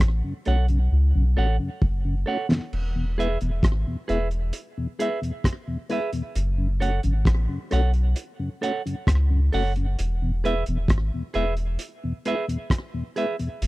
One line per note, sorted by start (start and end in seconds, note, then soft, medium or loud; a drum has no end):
0.00 0.22 A1 medium
0.00 kick loud
0.00 cross-stick loud
0.00 closed hi-hat medium
0.24 0.34 F#2 medium
0.24 0.34 C#3 medium
0.45 0.89 B1 medium
0.45 0.56 A3 medium
0.45 0.57 C#4 medium
0.45 0.56 F#4 medium
0.45 0.65 A4 medium
0.45 0.65 C#5 medium
0.45 0.66 F#5 medium
0.45 closed hi-hat medium
0.68 0.79 F#2 medium
0.68 0.79 C#3 medium
0.68 closed hi-hat medium
0.92 1.13 C#2 medium
1.15 1.36 B1 medium
1.15 1.25 F#2 medium
1.15 1.25 C#3 medium
1.36 1.59 A1 medium
1.36 1.47 A3 medium
1.36 1.47 C#4 medium
1.36 1.47 F#4 medium
1.36 1.55 A4 medium
1.36 1.56 C#5 medium
1.36 1.56 F#5 medium
1.60 1.70 F#2 medium
1.60 1.70 C#3 medium
1.82 2.25 F#1 medium
1.82 kick loud
2.05 2.15 F#2 medium
2.05 2.15 C#3 medium
2.26 2.37 A3 medium
2.26 2.37 C#4 medium
2.26 2.38 F#4 medium
2.26 2.45 A4 medium
2.26 2.46 C#5 medium
2.26 2.47 F#5 medium
2.51 2.60 F#2 medium
2.51 2.60 C#3 medium
2.51 snare medium
2.73 3.37 E1 loud
2.73 crash medium
2.95 3.05 E2 medium
2.95 3.06 B2 medium
3.18 3.28 G#3 medium
3.18 3.28 B3 medium
3.18 3.28 E4 medium
3.18 3.37 G#4 medium
3.18 3.37 B4 medium
3.18 3.38 E5 medium
3.18 closed hi-hat medium
3.41 3.62 E1 medium
3.41 3.51 E2 medium
3.41 3.51 B2 medium
3.41 closed hi-hat soft
3.63 3.85 G#1 medium
3.63 kick loud
3.63 cross-stick loud
3.63 closed hi-hat medium
3.87 3.97 E2 medium
3.87 3.97 B2 medium
4.08 4.51 E1 medium
4.08 4.19 G#3 medium
4.08 4.19 B3 medium
4.08 4.19 E4 medium
4.08 4.27 G#4 medium
4.08 4.28 B4 medium
4.08 4.28 E5 medium
4.08 closed hi-hat medium
4.31 closed hi-hat medium
4.53 closed hi-hat medium
4.78 4.87 E2 medium
4.78 4.87 B2 medium
4.99 5.09 G#3 medium
4.99 5.10 B3 medium
4.99 5.10 E4 medium
4.99 5.18 G#4 medium
4.99 5.19 B4 medium
4.99 5.19 E5 medium
4.99 closed hi-hat medium
5.21 5.32 E2 medium
5.21 5.32 B2 medium
5.21 closed hi-hat medium
5.44 kick loud
5.44 cross-stick loud
5.44 closed hi-hat loud
5.68 5.78 E2 medium
5.68 5.78 B2 medium
5.89 6.00 G#3 medium
5.89 6.00 B3 medium
5.89 6.00 E4 medium
5.89 6.09 G#4 medium
5.89 6.09 B4 medium
5.89 6.10 E5 medium
5.89 closed hi-hat medium
6.13 6.23 E2 medium
6.13 6.23 B2 medium
6.13 closed hi-hat medium
6.35 7.00 F#1 loud
6.35 closed hi-hat medium
6.58 6.68 F#2 medium
6.58 6.68 C#3 medium
6.80 6.91 A3 medium
6.80 6.91 C#4 medium
6.80 6.91 F#4 medium
6.80 6.99 A4 medium
6.80 7.00 C#5 medium
6.80 7.00 F#5 medium
6.80 closed hi-hat medium
7.03 7.25 G#1 medium
7.03 7.13 F#2 medium
7.03 7.14 C#3 medium
7.03 closed hi-hat soft
7.25 7.48 A1 loud
7.25 kick loud
7.25 cross-stick loud
7.25 closed hi-hat medium
7.49 7.59 F#2 medium
7.49 7.59 C#3 medium
7.71 8.14 B1 medium
7.71 7.81 A3 medium
7.71 7.82 C#4 medium
7.71 7.81 F#4 medium
7.71 7.90 A4 medium
7.71 7.91 C#5 medium
7.71 7.91 F#5 medium
7.71 cross-stick medium
7.71 closed hi-hat medium
7.94 closed hi-hat medium
8.16 closed hi-hat loud
8.39 8.50 F#2 medium
8.39 8.49 C#3 medium
8.61 8.72 A3 medium
8.61 8.72 C#4 medium
8.61 8.72 F#4 medium
8.61 8.81 A4 medium
8.61 8.81 C#5 medium
8.61 8.82 F#5 medium
8.61 closed hi-hat medium
8.86 8.95 F#2 medium
8.86 8.95 C#3 medium
8.86 closed hi-hat medium
9.07 9.50 C#2 loud
9.07 kick loud
9.07 cross-stick loud
9.07 closed hi-hat medium
9.30 9.40 F#2 medium
9.30 9.40 C#3 medium
9.53 9.96 F#1 medium
9.53 9.63 A3 medium
9.53 9.64 C#4 medium
9.53 9.64 F#4 medium
9.53 9.71 A4 medium
9.53 9.72 C#5 medium
9.53 9.72 F#5 loud
9.53 open hi-hat medium
9.76 9.86 F#2 medium
9.76 9.86 C#3 medium
9.76 closed hi-hat medium
9.99 10.63 E1 loud
9.99 closed hi-hat medium
10.22 10.32 E2 medium
10.22 10.32 B2 medium
10.44 10.54 G#3 medium
10.44 10.55 B3 medium
10.44 10.55 E4 medium
10.44 10.63 G#4 medium
10.44 10.63 B4 medium
10.44 10.64 E5 medium
10.44 closed hi-hat medium
10.66 10.88 E1 medium
10.66 10.78 E2 medium
10.66 10.78 B2 medium
10.66 closed hi-hat soft
10.88 11.11 G#1 medium
10.88 kick loud
10.88 cross-stick loud
10.88 closed hi-hat medium
11.14 11.23 E2 medium
11.14 11.23 B2 medium
11.34 11.77 E1 medium
11.34 11.45 G#3 medium
11.34 11.45 B3 medium
11.34 11.45 E4 medium
11.34 11.53 G#4 medium
11.34 11.53 B4 medium
11.34 11.54 E5 medium
11.34 closed hi-hat medium
11.57 closed hi-hat medium
11.79 closed hi-hat medium
12.04 12.13 E2 medium
12.04 12.13 B2 medium
12.25 12.35 G#3 medium
12.25 12.35 B3 medium
12.25 12.36 E4 medium
12.25 12.44 G#4 medium
12.25 12.45 B4 medium
12.25 12.45 E5 medium
12.25 closed hi-hat medium
12.48 12.58 E2 medium
12.48 12.58 B2 medium
12.48 closed hi-hat medium
12.70 kick loud
12.70 cross-stick loud
12.70 closed hi-hat medium
12.94 13.03 E2 medium
12.94 13.04 B2 medium
13.16 13.26 G#3 medium
13.16 13.27 B3 medium
13.16 13.27 E4 medium
13.16 13.35 G#4 medium
13.16 13.35 B4 medium
13.16 13.35 E5 medium
13.16 closed hi-hat medium
13.39 13.49 E2 medium
13.39 13.49 B2 medium
13.39 closed hi-hat medium
13.62 13.67 F#1 loud
13.62 closed hi-hat medium